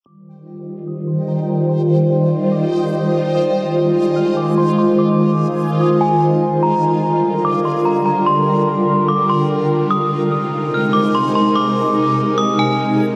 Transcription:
0.05 3.31 D#3 medium
0.05 3.31 G3 medium
0.05 9.88 F4 medium
0.05 6.59 C5 medium
0.05 3.31 C5 medium
0.05 6.59 D#5 medium
0.05 3.31 G5 medium
0.05 0.84 D6 medium
0.87 1.07 D#6 medium
1.07 1.27 C6 medium
1.28 1.48 A#5 medium
1.49 1.69 A#5 medium
1.69 2.48 C6 loud
2.52 2.71 D6 medium
2.72 2.92 C6 medium
3.34 6.60 D#3 medium
3.34 6.59 G#3 medium
3.34 6.59 G#5 medium
3.34 4.13 D#6 loud
4.16 4.36 F6 medium
4.37 4.56 D6 medium
4.58 4.77 C6 medium
4.78 4.98 C6 medium
4.99 5.77 D6 medium
5.81 6.00 D#6 medium
6.01 6.20 G#5 medium
6.63 9.88 D3 medium
6.63 9.88 G3 medium
6.63 13.16 A#4 medium
6.63 9.88 G5 medium
6.63 7.41 A#5 medium
7.45 7.64 D6 medium
7.65 7.85 C6 medium
7.85 8.04 A#5 medium
8.06 8.26 A#5 medium
8.26 9.05 C6 loud
9.08 9.28 D6 medium
9.29 9.49 C6 medium
9.90 13.16 C3 medium
9.90 13.16 G#3 medium
9.90 13.16 D#4 medium
9.90 13.16 C5 medium
9.90 13.16 G#5 medium
9.90 10.69 D#6 medium
10.74 10.94 F6 medium
10.93 11.13 D6 medium
11.15 11.34 C6 medium
11.35 11.55 C6 medium
11.55 12.34 D6 loud
12.38 12.57 D#6 medium
12.59 12.78 G#5 medium

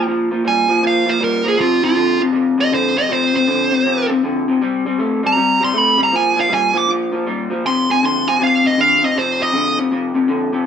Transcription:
0.07 0.28 A#2 medium
0.07 0.29 F3 loud
0.31 0.43 A#2 medium
0.31 0.44 F3 medium
0.44 0.66 A#2 medium
0.44 0.66 G3 loud
0.44 0.83 G#5 medium
0.68 0.81 A#2 medium
0.68 0.81 F3 medium
0.82 1.04 A#2 medium
0.82 1.04 F3 loud
0.87 1.08 F5 medium
1.06 1.19 A#2 medium
1.06 1.19 F3 medium
1.06 1.21 C5 loud
1.20 1.42 A#2 medium
1.20 1.42 G3 medium
1.24 1.46 A#4 loud
1.44 1.57 A#2 medium
1.44 1.57 F3 medium
1.44 1.59 G#4 medium
1.58 1.80 F2 loud
1.58 1.80 C3 loud
1.58 1.83 F4 loud
1.82 1.95 F2 medium
1.82 1.95 C3 medium
1.82 2.20 F4 loud
1.96 2.18 F2 medium
1.96 2.18 D3 loud
2.20 2.32 F2 medium
2.20 2.32 C3 medium
2.33 2.55 F2 medium
2.33 2.55 C3 medium
2.58 2.70 F2 medium
2.58 2.70 C3 medium
2.58 2.73 D#5 loud
2.72 2.93 F2 medium
2.72 2.94 D3 loud
2.72 2.96 C5 loud
2.96 3.08 F2 medium
2.96 3.08 C3 medium
2.96 3.10 D#5 loud
3.09 3.31 F2 medium
3.09 3.31 C3 loud
3.09 3.35 C5 loud
3.34 3.46 F2 medium
3.34 3.46 C3 medium
3.34 4.08 C5 medium
3.47 3.69 F2 medium
3.47 3.69 D3 loud
3.71 3.84 F2 medium
3.71 3.84 C3 medium
3.86 4.07 F2 medium
3.86 4.07 C3 medium
4.09 4.22 F2 medium
4.09 4.22 C3 medium
4.23 4.45 F2 medium
4.23 4.45 D3 medium
4.48 4.60 F2 medium
4.48 4.60 C3 medium
4.61 4.83 C3 medium
4.61 4.83 G3 loud
4.86 4.98 C3 medium
4.86 4.98 G3 medium
4.99 5.21 C3 medium
4.99 5.21 A3 loud
5.23 5.35 C3 medium
5.23 5.35 G3 medium
5.23 5.62 A#5 medium
5.36 5.58 C3 medium
5.36 5.59 G3 loud
5.61 5.72 C3 medium
5.61 5.73 G3 medium
5.61 5.78 C6 loud
5.74 5.96 C3 medium
5.74 5.96 A3 loud
5.78 6.00 B5 loud
5.98 6.11 C3 medium
5.98 6.11 G3 medium
6.03 6.14 A#5 medium
6.12 6.34 A#2 medium
6.12 6.34 F3 loud
6.12 6.38 G#5 loud
6.36 6.48 A#2 medium
6.36 6.49 F3 medium
6.41 6.52 F5 loud
6.49 6.71 A#2 medium
6.49 6.72 G3 loud
6.54 6.76 G#5 loud
6.73 6.86 A#2 medium
6.73 6.87 F3 medium
6.78 6.89 D6 loud
6.88 7.10 A#2 medium
6.88 7.10 F3 loud
7.12 7.24 A#2 medium
7.12 7.25 F3 medium
7.27 7.48 A#2 medium
7.27 7.48 G3 loud
7.50 7.62 A#2 medium
7.50 7.63 F3 medium
7.65 7.86 F2 medium
7.65 7.86 C3 loud
7.65 7.89 C6 loud
7.89 8.01 F2 medium
7.89 8.01 C3 medium
7.89 8.03 G#5 medium
8.03 8.24 F2 medium
8.03 8.24 D3 loud
8.03 8.27 C6 medium
8.27 8.39 F2 medium
8.27 8.39 C3 loud
8.27 8.41 G#5 medium
8.40 8.62 F2 medium
8.40 8.62 C3 loud
8.40 8.65 F5 loud
8.64 8.76 F2 medium
8.64 8.77 C3 medium
8.64 8.81 D#5 medium
8.78 9.00 F2 medium
8.78 9.00 D3 loud
8.78 9.03 F5 loud
9.02 9.14 F2 medium
9.02 9.14 C3 loud
9.02 9.17 D#5 medium
9.16 9.37 F2 medium
9.16 9.38 C3 loud
9.16 9.42 C5 loud
9.40 9.51 F2 medium
9.40 9.53 C3 medium
9.40 9.78 D#5 loud
9.53 9.75 F2 medium
9.53 9.75 D3 loud
9.78 9.90 F2 medium
9.78 9.90 C3 loud
9.91 10.13 F2 medium
9.91 10.14 C3 loud
10.14 10.27 F2 medium
10.14 10.28 C3 loud
10.28 10.51 F2 medium
10.28 10.51 D3 loud
10.52 10.66 F2 medium
10.52 10.66 C3 loud

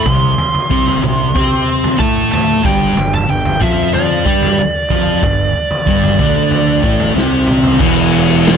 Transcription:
0.04 0.36 C2 medium
0.04 0.32 C3 medium
0.04 2.04 C6 loud
0.04 kick medium
0.04 floor tom medium
0.38 floor tom medium
0.55 floor tom medium
0.70 1.01 C2 medium
0.70 1.01 C3 loud
0.70 1.02 C4 loud
0.70 kick loud
0.88 floor tom medium
1.02 1.33 C2 medium
1.02 1.29 C3 medium
1.02 mid tom medium
1.34 1.96 C3 loud
1.34 2.00 C4 medium
1.34 2.01 C5 loud
1.34 kick loud
1.34 floor tom medium
1.84 floor tom medium
1.99 2.61 A2 medium
1.99 2.63 A3 loud
1.99 2.64 A4 loud
1.99 2.31 A5 medium
1.99 kick loud
2.32 2.65 A5 loud
2.32 floor tom medium
2.64 2.95 G1 medium
2.64 2.95 G2 loud
2.64 2.96 G3 loud
2.64 3.14 G5 medium
2.64 kick loud
2.64 floor tom medium
2.96 3.27 G1 medium
2.96 3.22 G2 medium
2.96 floor tom medium
3.14 3.30 A5 medium
3.14 floor tom medium
3.28 3.59 G1 medium
3.28 3.54 G2 medium
3.28 3.62 G5 medium
3.45 floor tom medium
3.60 4.22 F2 medium
3.60 4.24 F3 medium
3.60 4.24 F4 loud
3.60 3.92 E5 medium
3.60 kick loud
3.60 mid tom medium
3.94 7.12 D5 medium
3.94 floor tom medium
4.25 4.56 G2 medium
4.25 4.57 G3 medium
4.25 4.57 G4 loud
4.25 kick loud
4.42 floor tom medium
4.59 muted distorted electric guitar stroke medium
4.59 muted fingered electric bass stroke soft
4.90 5.20 F2 medium
4.90 5.22 F3 medium
4.90 5.22 F4 loud
4.90 kick loud
4.90 floor tom medium
5.23 5.53 G1 medium
5.23 5.49 G2 medium
5.23 kick loud
5.23 floor tom medium
5.71 floor tom medium
5.87 6.17 G1 medium
5.87 6.19 G2 medium
5.87 6.19 G3 loud
5.87 kick loud
6.03 floor tom medium
6.19 6.80 D2 medium
6.19 6.82 D3 loud
6.19 6.82 D4 loud
6.19 kick loud
6.19 mid tom medium
6.51 floor tom medium
6.83 7.14 A1 medium
6.83 7.14 A2 medium
6.83 7.14 A3 medium
6.83 kick loud
7.00 floor tom medium
7.14 7.77 C2 medium
7.14 7.79 C3 loud
7.14 7.79 C4 loud
7.14 snare medium
7.47 floor tom medium
7.47 mid tom medium
7.64 floor tom medium
7.79 8.57 E1 medium
7.79 8.57 E2 loud
7.79 8.57 E3 loud
7.79 kick loud
7.79 crash loud
8.12 ride medium
8.45 snare loud
8.45 ride loud

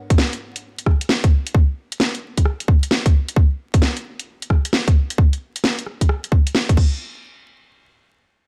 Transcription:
0.10 kick loud
0.10 closed hi-hat medium
0.18 snare loud
0.33 closed hi-hat soft
0.56 closed hi-hat medium
0.78 closed hi-hat medium
0.86 kick medium
0.86 cross-stick medium
1.01 closed hi-hat medium
1.09 snare loud
1.24 kick loud
1.24 closed hi-hat soft
1.47 closed hi-hat medium
1.55 kick loud
1.92 closed hi-hat medium
2.00 snare loud
2.15 closed hi-hat soft
2.37 kick medium
2.37 closed hi-hat medium
2.45 cross-stick medium
2.60 closed hi-hat medium
2.68 kick loud
2.83 closed hi-hat medium
2.91 snare loud
3.06 kick loud
3.06 closed hi-hat medium
3.29 closed hi-hat medium
3.36 kick loud
3.74 kick loud
3.74 closed hi-hat medium
3.82 snare loud
3.97 closed hi-hat soft
4.19 closed hi-hat medium
4.42 closed hi-hat medium
4.50 kick medium
4.50 cross-stick medium
4.65 closed hi-hat medium
4.73 snare loud
4.88 kick loud
4.88 closed hi-hat medium
5.10 closed hi-hat medium
5.18 kick loud
5.33 closed hi-hat soft
5.56 closed hi-hat medium
5.64 snare loud
5.79 closed hi-hat soft
5.86 cross-stick soft
6.01 kick medium
6.01 closed hi-hat medium
6.09 cross-stick medium
6.24 closed hi-hat soft
6.32 kick medium
6.47 closed hi-hat medium
6.55 snare loud
6.69 kick loud
6.69 closed hi-hat soft
6.77 kick loud
6.77 crash medium

